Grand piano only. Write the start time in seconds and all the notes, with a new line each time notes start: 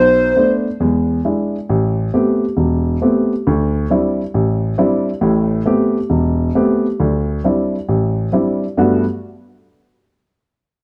Already playing: B1
0.37 A3 B3 D4
0.80 E2 G#3
1.25 G#3 D4 E4
1.69 A1
2.14 A3 B3 C4 G4
2.57 E1
3.02 A3 B3 C4 G4
3.47 D2
3.90 G3 C4 D4 E4
4.34 A1
4.78 G3 C4 D4 E4
5.21 A1 A2
5.66 A3 B3 C4 G4
6.10 E1
6.55 A3 B3 C4 G4
7.00 D2 D3
7.44 G3 C4 D4 E4
7.88 A1
8.32 G3 C4 D4 E4
8.77 G2 G3 A3 B3 F#4